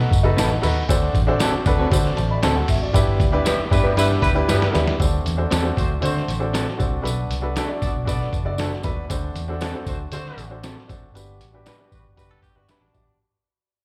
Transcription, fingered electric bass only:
0.11 0.30 F#1 loud
0.38 0.56 A1 medium
0.64 0.82 D#2 medium
0.89 1.08 D2 loud
1.15 1.33 A1 loud
1.54 muted fingered electric bass stroke medium
1.66 1.85 D2 loud
1.92 2.10 D3 loud
2.18 2.36 A1 loud
2.43 2.62 D2 loud
2.69 2.88 G#1 loud
2.94 3.13 G1 loud
3.20 3.38 D2 loud
3.59 muted fingered electric bass stroke medium
3.71 3.90 G2 medium
3.97 4.16 G2 loud
4.22 4.41 D2 loud
4.49 4.67 G2 medium
4.75 4.93 D#2 loud
5.00 5.18 D2 loud
5.27 5.45 E2 loud
5.52 5.70 E2 loud
5.77 5.96 D2 medium
6.03 6.21 D3 loud
6.28 6.65 A1 medium
6.80 6.98 C2 medium
7.05 7.23 B1 loud
7.30 7.58 C2 medium
7.82 7.91 C2 loud
7.95 8.04 B1 loud
8.08 8.26 B2 loud
8.33 8.70 F#1 loud
8.84 9.03 D#2 medium
9.10 9.29 D2 loud
9.35 9.73 E2 loud
9.86 10.05 D2 medium
10.12 10.31 D3 medium
10.37 10.75 A1 loud
10.89 11.08 G#1 medium
11.15 11.41 G1 loud
11.41 11.69 A1 medium
11.92 12.01 A1 medium
12.05 12.14 G1 medium
12.18 12.36 F#1 medium
12.56 12.65 G1 medium
12.81 12.91 A1 medium
12.95 13.04 A1 medium
13.07 13.16 G#1 medium

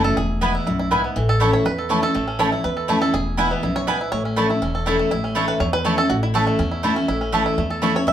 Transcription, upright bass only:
0.00 0.14 F#1 loud
0.17 0.55 E1 medium
0.67 1.04 B1 medium
1.16 1.54 A1 loud
1.66 2.03 E2 medium
2.15 2.53 A1 loud
2.64 3.02 E2 medium
3.14 3.51 E1 loud
3.63 4.00 B1 medium
4.12 4.50 A1 loud
4.62 4.99 E1 medium
5.11 5.49 A1 loud
5.60 5.98 E2 medium
6.10 6.47 A1 medium
6.59 6.97 E2 medium
7.08 7.46 A1 loud
7.58 7.95 E2 medium
8.07 8.13 E1 loud

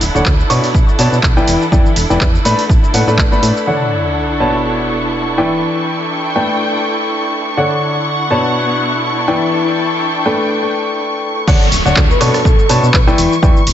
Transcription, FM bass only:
0.01 0.10 D1 medium
0.15 0.22 D1 medium
0.26 0.43 D2 loud
0.50 0.59 B2 medium
0.74 0.84 B1 medium
0.99 1.08 B2 medium
1.12 1.20 B2 medium
1.23 1.41 B1 medium
1.48 1.57 E1 medium
1.72 1.81 E2 loud
1.96 2.06 E1 medium
2.10 2.17 E1 medium
2.21 2.38 E2 loud
2.45 2.54 A2 medium
2.70 2.79 A1 medium
2.94 3.03 A2 loud
3.07 3.20 A2 medium
3.18 3.27 A1 medium
3.42 3.52 A2 loud
11.48 11.57 D2 loud
11.72 11.81 D1 medium
11.86 11.93 D1 medium
11.96 12.14 D2 loud
12.21 12.30 B2 medium
12.45 12.54 B1 medium
12.69 12.79 B2 medium
12.83 12.90 B2 medium
12.94 13.11 B1 medium
13.18 13.27 E1 medium
13.43 13.52 E2 loud
13.67 13.73 E1 medium

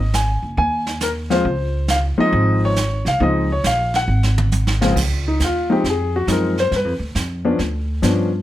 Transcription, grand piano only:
0.00 0.16 D#5 medium
0.15 0.55 G#5 medium
0.58 1.03 G#5 loud
1.03 1.09 A#4 medium
1.30 1.43 F3 medium
1.30 1.43 G#3 medium
1.30 1.43 C4 medium
1.30 1.44 F4 medium
1.30 1.91 C5 medium
1.90 1.97 F5 medium
2.18 2.73 F3 medium
2.18 2.73 G#3 medium
2.18 2.73 C4 medium
2.18 2.74 D#4 medium
2.18 2.60 D#5 loud
2.65 3.04 C#5 loud
3.08 3.22 F5 medium
3.20 3.47 F3 medium
3.20 3.47 G#3 medium
3.20 3.47 C4 medium
3.20 3.47 D#4 medium
3.20 3.49 D#5 medium
3.52 3.66 C#5 medium
3.67 3.96 F5 medium
3.96 4.78 F#5 medium
4.81 4.94 C#2 medium
4.81 4.94 F3 medium
4.81 4.94 G#3 medium
4.81 4.94 C4 medium
4.81 4.95 F4 medium
5.28 5.40 D#4 medium
5.44 5.71 F4 medium
5.70 5.82 F3 medium
5.70 5.82 G#3 medium
5.70 5.82 C4 medium
5.70 5.82 D#4 medium
5.70 5.85 G4 medium
5.90 6.15 G#4 medium
6.16 6.28 F#4 medium
6.28 6.54 F3 medium
6.28 6.54 G#3 medium
6.28 6.54 C4 medium
6.28 6.54 D#4 medium
6.32 6.58 A#4 medium
6.60 6.72 C5 loud
6.76 6.92 B4 medium
7.45 7.58 F3 medium
7.45 7.58 B3 medium
7.45 7.58 C#4 medium
7.45 7.58 D4 medium
8.02 8.29 F3 medium
8.02 8.29 B3 medium
8.02 8.29 C#4 medium
8.02 8.29 D4 medium

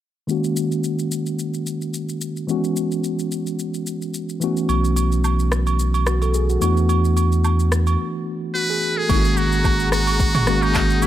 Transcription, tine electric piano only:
0.27 2.44 D#3 medium
0.27 2.45 G#3 medium
0.27 2.45 A#3 medium
0.27 2.46 C#4 medium
0.27 2.46 F#4 medium
2.47 4.37 E3 medium
2.47 4.37 G#3 medium
2.47 4.38 B3 medium
2.47 4.38 C#4 medium
2.47 4.39 F#4 medium
4.40 6.57 E3 medium
4.40 6.57 A3 medium
4.40 6.58 B3 medium
4.40 6.58 C#4 medium
4.40 6.05 F#4 medium
6.07 6.21 F#4 medium
6.22 6.34 A4 medium
6.35 6.49 G#4 medium
6.50 6.63 F#4 medium
6.60 8.77 E3 medium
6.60 8.78 A3 medium
6.60 8.78 B3 medium
6.60 8.79 D4 medium
6.60 8.52 F#4 medium
8.55 8.69 F#4 medium
8.70 8.96 G#4 medium
8.98 9.24 A4 medium
9.09 9.98 D#3 medium
9.09 9.98 G#3 medium
9.09 9.98 A#3 medium
9.09 9.99 C#4 medium
9.09 9.17 E4 medium
9.17 10.02 F#4 medium
10.47 10.92 D#3 medium
10.47 10.92 G#3 medium
10.47 10.92 A#3 medium
10.47 10.93 C#4 medium
10.47 10.93 F#4 medium
11.02 11.07 D#3 medium
11.02 11.07 G#3 medium
11.02 11.07 A#3 medium
11.02 11.07 C#4 medium
11.02 11.07 F#4 medium

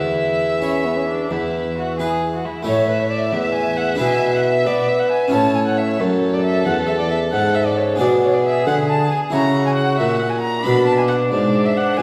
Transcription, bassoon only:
0.00 1.29 E2 soft
1.30 2.41 E2 soft
2.67 3.30 A2 soft
3.34 3.99 E2 soft
4.00 4.68 B2 soft
4.66 5.35 B3 soft
5.34 6.00 A2 soft
6.00 6.65 F#2 soft
6.66 7.31 E2 soft
7.32 7.98 G#2 soft
8.00 8.65 B2 medium
8.66 9.09 D3 soft
9.33 9.96 C#3 soft
10.00 10.65 A#2 medium
10.66 11.31 B2 medium
11.32 12.00 G#2 medium
11.98 12.02 B2 medium

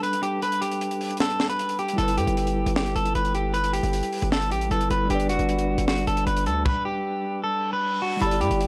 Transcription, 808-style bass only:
1.98 2.19 G1 loud
2.18 2.27 G2 loud
2.27 2.65 G1 loud
2.66 2.94 G1 loud
2.96 3.14 G1 loud
3.15 3.81 G1 loud
3.83 4.02 G1 loud
4.22 4.53 G1 loud
4.51 4.70 A1 loud
4.71 4.90 G1 loud
4.90 5.09 G1 loud
5.10 5.31 G1 loud
5.29 5.39 F#1 loud
5.39 5.77 G1 loud
5.78 6.06 G1 loud
6.07 6.26 G1 loud
6.27 6.48 G1 loud
6.46 6.65 D2 loud
8.21 8.43 G1 loud
8.41 8.50 G2 loud
8.51 8.67 G1 loud

